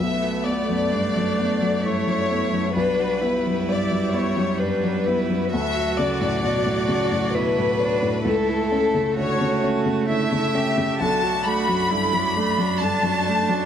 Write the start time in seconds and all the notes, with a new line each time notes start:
Already playing: E5
0.00 B1 A3 B3 F#4 B4
0.23 F#4
0.46 B3 D5
0.69 F#2
0.92 G2 D4
1.17 F#2
1.39 B3
1.62 F#2
1.83 G2 E4 C#5
2.07 F#2
2.30 B3
2.53 F#2
2.75 B1 G3 B3 D4 B4
2.99 F#4
3.21 B3 E4
3.47 F#2
3.68 G2 D5
3.91 F#2
4.13 B3 C#5
4.36 F#2
4.59 G2 D4 B4
4.84 F#2
5.06 B3 E4
5.30 F#2
5.51 D2 F#3 A3 F#4 A4 E5
5.76 F#4
5.98 C#3 D5
6.21 A2
6.43 B2 F#4
6.66 A2
6.88 C#3
7.11 A2
7.35 B2 E4 B4
7.58 A2
7.80 D4 C#5
8.03 A2
8.25 C#2 A3 E4 A4
8.49 E4
8.72 C#4
8.95 C#3
9.17 D3 F#4 C#5
9.41 C#3
9.64 C#4
9.86 C#3
10.08 D3 E4 E5
10.32 C#3
10.54 C#4 G4
10.78 C#3
11.00 B1 D3 A3 D4 F#4 D5 A5
11.23 F#3 F#4
11.45 A3 D4 B5
11.68 F#2 F#3
11.91 G2 D3 E4
12.13 F#2 F#3
12.36 A3 D4
12.58 F#2 F#3
12.81 G2 D3 A5
13.03 F#2 F#3
13.25 A3 D4
13.49 F#2 F#3